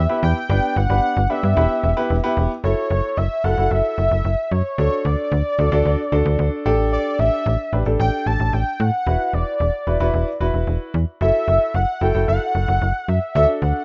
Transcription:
0.00 0.19 E5 loud
0.09 0.36 B3 medium
0.09 0.36 E4 medium
0.09 0.36 G4 medium
0.09 0.36 B4 medium
0.23 0.34 E2 loud
0.23 0.78 G5 loud
0.50 0.60 G1 loud
0.50 0.77 B3 medium
0.50 0.77 D4 medium
0.50 0.77 G4 medium
0.50 0.77 B4 medium
0.76 0.87 G1 loud
0.76 1.31 F#5 loud
0.90 1.01 G1 loud
0.90 1.17 B3 medium
0.90 1.17 D4 medium
0.90 1.17 G4 medium
0.90 1.17 B4 medium
1.17 1.27 G1 loud
1.30 1.55 B3 medium
1.30 1.57 D4 medium
1.30 1.55 G4 medium
1.30 1.55 B4 medium
1.30 2.37 E5 loud
1.43 1.54 G2 medium
1.57 1.68 E1 loud
1.57 1.89 B3 medium
1.57 1.89 E4 medium
1.57 1.89 G4 medium
1.57 1.89 B4 medium
1.84 1.94 E1 loud
1.97 2.15 B3 medium
1.97 2.15 E4 medium
1.97 2.15 G4 medium
1.97 2.15 B4 loud
2.10 2.21 E1 loud
2.24 2.51 B3 medium
2.24 2.51 E4 medium
2.24 2.51 G4 medium
2.24 2.51 B4 loud
2.37 2.48 E1 loud
2.64 2.75 F#1 loud
2.64 3.18 E4 medium
2.64 3.18 F#4 medium
2.64 3.18 A4 medium
2.64 3.19 C#5 loud
2.91 3.01 F#1 loud
3.17 3.28 F#1 loud
3.17 3.46 E5 loud
3.44 3.55 F#1 loud
3.44 3.53 E4 medium
3.44 3.53 F#4 medium
3.44 3.53 A4 medium
3.44 3.72 F#5 loud
3.58 3.68 F#1 medium
3.58 4.30 E4 medium
3.58 4.30 F#4 medium
3.58 4.30 A4 medium
3.71 3.82 F#1 loud
3.71 4.53 E5 loud
3.98 4.09 F#1 loud
4.11 4.22 F#1 loud
4.25 4.35 F#1 loud
4.51 4.62 F#2 medium
4.51 4.77 C#5 medium
4.78 4.89 D2 loud
4.78 5.32 D4 medium
4.78 5.32 F#4 medium
4.78 5.32 A4 medium
4.78 5.06 C#5 loud
5.05 5.16 D2 loud
5.05 6.66 D5 loud
5.32 5.43 D2 loud
5.59 5.69 D2 loud
5.59 5.68 D4 medium
5.59 5.68 F#4 medium
5.59 5.68 A4 medium
5.72 5.83 D2 loud
5.72 5.99 D4 medium
5.72 5.99 F#4 medium
5.72 5.99 A4 loud
5.85 5.96 D2 loud
6.12 6.23 D2 medium
6.12 6.64 D4 medium
6.12 6.66 F#4 medium
6.12 6.64 A4 loud
6.26 6.36 D2 loud
6.39 6.50 D2 loud
6.66 6.98 A1 medium
6.66 7.51 D4 medium
6.66 7.51 G4 medium
6.66 7.51 A4 loud
6.92 7.21 D5 loud
7.19 7.30 A1 loud
7.19 7.73 E5 loud
7.46 7.57 A1 loud
7.73 7.84 A1 loud
7.73 7.82 D4 medium
7.73 7.82 G4 medium
7.73 7.82 B4 medium
7.86 7.97 A1 medium
7.86 8.58 D4 medium
7.86 8.58 G4 medium
7.86 8.58 A4 medium
7.99 8.10 A1 loud
7.99 8.28 G5 loud
8.26 8.37 A1 medium
8.26 8.55 A5 loud
8.40 8.51 A1 loud
8.53 8.64 A1 medium
8.53 8.82 G5 loud
8.80 8.91 A2 loud
8.80 9.35 F#5 loud
9.07 9.17 E1 loud
9.07 9.61 E4 medium
9.07 9.61 F#4 medium
9.07 9.61 B4 medium
9.33 9.44 E1 medium
9.33 10.41 D5 medium
9.60 9.71 E1 loud
9.87 9.98 E1 medium
9.87 9.96 E4 medium
9.87 9.96 F#4 medium
9.87 9.96 B4 medium
10.00 10.11 E1 loud
10.00 10.27 E4 medium
10.00 10.27 F#4 medium
10.00 10.27 B4 medium
10.14 10.25 E1 loud
10.41 10.51 E1 medium
10.41 10.95 E4 medium
10.41 10.95 F#4 medium
10.41 10.95 B4 loud
10.54 10.65 E1 medium
10.67 10.78 E1 loud
10.94 11.05 E2 loud
11.21 11.32 F#1 loud
11.21 11.75 E4 medium
11.21 11.75 F#4 medium
11.21 11.75 A4 medium
11.21 11.76 E5 loud
11.48 11.59 F#1 loud
11.74 11.85 F#1 loud
11.74 12.03 F#5 loud
12.01 12.12 F#1 loud
12.01 12.10 E4 medium
12.01 12.10 F#4 medium
12.01 12.10 A4 medium
12.01 12.27 G5 loud
12.15 12.26 F#1 medium
12.15 12.87 E4 medium
12.15 12.87 F#4 medium
12.15 12.87 A4 medium
12.28 12.39 F#1 loud
12.28 13.10 F#5 loud
12.55 12.66 F#1 medium
12.68 12.79 F#1 loud
12.82 12.92 F#1 loud
13.08 13.19 F#2 medium
13.08 13.35 E5 medium
13.35 13.46 D2 loud
13.35 13.85 D4 medium
13.35 13.85 F#4 medium
13.35 13.85 A4 medium
13.35 13.47 E5 loud
13.62 13.73 D2 loud
13.62 13.85 F#5 loud

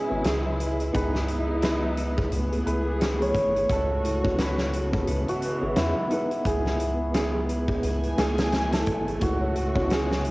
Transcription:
0.00 0.91 C#3 medium
0.00 0.92 G#3 medium
0.00 0.92 E4 medium
0.00 1.44 F#4 medium
0.00 0.26 G#4 medium
0.09 0.23 G#1 medium
0.09 0.25 B3 medium
0.09 0.25 C#4 medium
0.09 0.26 F#4 medium
0.09 0.26 G#4 loud
0.09 0.24 B4 medium
0.24 0.91 C#2 loud
0.24 3.29 G#4 loud
0.24 snare loud
0.24 closed hi-hat medium
0.44 0.57 B4 medium
0.58 0.78 B4 loud
0.58 closed hi-hat medium
0.80 closed hi-hat soft
0.93 2.29 C#2 loud
0.93 1.14 B3 medium
0.93 3.67 B3 medium
0.93 1.11 C#4 medium
0.93 1.14 D#4 medium
0.93 2.31 D#4 medium
0.93 1.14 E4 medium
0.93 2.31 E4 medium
0.93 1.15 G#4 medium
0.93 1.62 B4 medium
0.93 kick loud
0.93 closed hi-hat loud
1.13 1.27 G#4 medium
1.13 snare soft
1.28 closed hi-hat medium
1.48 1.61 G#4 medium
1.62 1.81 B4 loud
1.62 2.66 B4 medium
1.62 snare loud
1.62 closed hi-hat medium
1.97 2.15 C#4 medium
1.97 closed hi-hat medium
2.17 2.31 G#4 medium
2.17 kick medium
2.32 2.63 C#2 loud
2.32 3.68 E3 medium
2.32 5.05 A3 medium
2.32 3.69 G#4 medium
2.32 closed hi-hat medium
2.52 2.65 G#4 medium
2.52 closed hi-hat soft
2.65 3.32 C#2 loud
2.65 3.15 A3 medium
2.65 3.16 B3 medium
2.65 3.16 E4 medium
2.65 3.17 G#4 medium
2.65 2.85 B4 loud
2.65 4.40 B4 medium
2.65 closed hi-hat medium
3.00 3.18 C#4 medium
3.00 snare loud
3.00 closed hi-hat medium
3.19 3.67 A3 medium
3.19 3.68 B3 medium
3.19 3.68 E4 medium
3.19 3.34 G#4 medium
3.19 3.68 G#4 medium
3.19 5.77 C#5 medium
3.19 closed hi-hat soft
3.35 3.66 G#1 medium
3.35 kick medium
3.35 closed hi-hat medium
3.55 3.68 G#4 medium
3.55 closed hi-hat soft
3.69 5.05 C#2 loud
3.69 6.43 C#3 medium
3.69 3.89 C#4 loud
3.69 5.06 F#4 medium
3.69 6.52 A4 medium
3.69 kick loud
3.69 closed hi-hat medium
4.04 4.22 E4 medium
4.04 closed hi-hat medium
4.23 4.88 B3 medium
4.23 4.88 C#4 medium
4.23 4.88 E4 medium
4.23 4.89 F#4 medium
4.23 4.38 C#5 medium
4.23 kick medium
4.38 7.14 B4 medium
4.38 snare loud
4.38 closed hi-hat medium
4.58 4.71 C#5 medium
4.58 snare soft
4.73 4.92 C#4 medium
4.73 closed hi-hat medium
4.91 5.56 B3 medium
4.91 5.57 C#4 medium
4.91 5.57 F#4 medium
4.91 5.58 G#4 medium
4.91 kick medium
5.07 5.25 C#2 medium
5.07 6.44 E3 medium
5.07 6.44 G#3 medium
5.07 5.26 C#4 medium
5.07 closed hi-hat medium
5.27 8.54 F#4 loud
5.27 5.41 B4 medium
5.27 closed hi-hat soft
5.42 closed hi-hat medium
5.60 5.75 G#1 medium
5.60 6.07 B3 medium
5.60 6.07 C#4 medium
5.60 6.08 F#4 medium
5.60 6.08 G#4 medium
5.60 5.75 B4 medium
5.76 5.94 E2 medium
5.76 9.25 E4 medium
5.76 5.95 B4 loud
5.76 snare loud
5.76 closed hi-hat medium
6.09 7.81 B3 medium
6.09 6.29 C#4 medium
6.09 7.81 D#4 medium
6.09 7.82 E4 medium
6.09 closed hi-hat medium
6.13 7.83 B4 loud
6.30 6.44 B4 medium
6.30 closed hi-hat soft
6.44 7.81 C#2 medium
6.44 9.18 B3 medium
6.44 7.14 G#4 medium
6.44 kick loud
6.44 closed hi-hat medium
6.65 6.78 G#4 medium
6.65 snare soft
6.79 6.99 B4 loud
6.79 closed hi-hat medium
7.14 7.32 C#4 medium
7.14 8.18 G#4 medium
7.14 snare loud
7.14 closed hi-hat medium
7.34 7.48 G#4 medium
7.49 closed hi-hat medium
7.68 7.82 G#4 medium
7.68 kick loud
7.82 8.14 C#2 loud
7.82 9.19 E3 medium
7.82 10.31 A3 medium
7.82 8.02 B4 loud
7.82 9.19 G#5 medium
7.82 closed hi-hat medium
8.03 closed hi-hat soft
8.16 8.84 C#2 medium
8.16 8.67 A3 medium
8.16 8.67 B3 medium
8.16 8.36 C#4 medium
8.16 8.68 E4 medium
8.16 8.79 G#4 medium
8.16 8.68 G#4 medium
8.16 snare loud
8.16 closed hi-hat medium
8.37 8.51 G#4 medium
8.37 snare loud
8.37 closed hi-hat medium
8.52 snare loud
8.52 closed hi-hat medium
8.71 9.19 A3 medium
8.71 9.19 B3 medium
8.71 9.20 E4 medium
8.71 8.85 G#4 medium
8.71 9.98 A4 medium
8.71 9.20 A4 medium
8.71 snare loud
8.71 closed hi-hat medium
8.85 9.18 G#1 medium
8.85 9.05 B4 loud
8.85 kick loud
8.85 closed hi-hat medium
9.07 closed hi-hat soft
9.20 10.31 C#2 loud
9.20 10.31 C#3 medium
9.20 9.39 E4 medium
9.20 10.31 F#4 medium
9.20 kick loud
9.20 closed hi-hat loud
9.41 9.55 C#5 medium
9.55 closed hi-hat medium
9.75 10.31 B3 medium
9.75 10.31 C#4 medium
9.75 10.31 E4 medium
9.75 10.31 F#4 medium
9.75 9.88 C#5 medium
9.75 kick loud
9.89 10.09 C#4 loud
9.89 10.31 G#4 medium
9.89 snare loud
9.89 closed hi-hat medium
10.11 snare medium
10.25 10.31 E4 medium
10.25 closed hi-hat medium

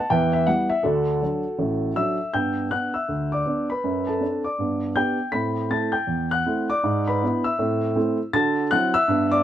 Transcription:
0.10 0.42 E2 medium
0.10 0.42 E3 medium
0.10 0.32 B4 medium
0.10 0.32 E5 medium
0.10 0.33 G5 medium
0.33 0.47 E5 medium
0.47 0.68 G3 soft
0.47 0.68 B3 soft
0.47 0.68 E4 soft
0.47 0.70 F#5 medium
0.70 0.84 E5 medium
0.83 1.16 D2 medium
0.83 1.16 D3 medium
0.83 1.21 D4 medium
0.83 2.16 F#4 medium
0.83 2.19 A4 medium
1.22 1.42 F#3 soft
1.22 1.43 D4 soft
1.59 1.91 A1 soft
1.59 1.91 A2 medium
1.96 2.17 F#3 soft
1.96 2.17 D4 soft
1.96 2.31 E5 medium
1.96 2.34 E6 medium
2.34 2.66 G2 medium
2.34 2.56 B3 soft
2.34 2.69 G5 medium
2.34 2.71 G6 medium
2.71 2.92 B3 soft
2.71 2.92 D4 soft
2.71 2.93 F#5 medium
2.71 2.94 F#6 medium
2.94 3.30 E5 medium
2.94 3.32 E6 medium
3.09 3.41 D2 medium
3.32 3.68 D5 medium
3.32 3.70 D6 medium
3.45 3.66 B3 soft
3.45 3.67 D4 soft
3.70 4.06 B4 medium
3.70 4.07 B5 medium
3.84 4.16 F#2 medium
4.07 4.43 A4 soft
4.07 4.45 A5 medium
4.20 4.41 C4 soft
4.20 4.42 D4 soft
4.44 4.80 D5 soft
4.44 4.82 D6 medium
4.59 4.91 G2 medium
4.59 4.81 B3 soft
4.96 5.16 B3 soft
4.96 5.16 D4 soft
4.96 5.17 G4 soft
4.96 5.32 G5 medium
4.96 5.34 G6 medium
5.32 5.65 A2 medium
5.32 5.55 C4 soft
5.32 5.68 B5 medium
5.32 5.71 B6 medium
5.70 5.91 A3 soft
5.70 5.91 C4 soft
5.70 5.92 E4 soft
5.70 5.93 A5 medium
5.70 5.94 A6 medium
5.92 6.29 G5 medium
5.92 6.31 G6 medium
6.07 6.40 E2 medium
6.31 6.68 F#5 medium
6.31 6.69 F#6 loud
6.46 6.67 A3 soft
6.46 6.67 C4 soft
6.46 6.67 E4 soft
6.70 7.05 D5 medium
6.70 7.07 D6 medium
6.84 7.16 G#2 medium
7.08 7.43 B4 medium
7.08 7.45 B5 medium
7.22 7.43 B3 medium
7.22 7.43 D4 soft
7.22 7.43 E4 soft
7.44 7.80 E5 medium
7.44 7.82 E6 medium
7.59 7.91 A2 medium
7.59 7.81 C4 soft
7.96 8.17 A3 medium
7.96 8.17 C4 medium
7.96 8.17 E4 medium
8.33 8.66 D3 medium
8.33 8.56 F#4 soft
8.33 8.69 A5 medium
8.33 8.72 A6 loud
8.71 8.92 F#3 soft
8.71 8.93 C4 medium
8.71 8.93 E4 medium
8.71 8.94 F#5 medium
8.71 8.95 F#6 loud
8.94 9.30 E5 medium
8.94 9.32 E6 loud
9.08 9.41 G2 medium
9.08 9.31 B3 medium
9.31 9.43 D5 medium
9.31 9.43 D6 loud

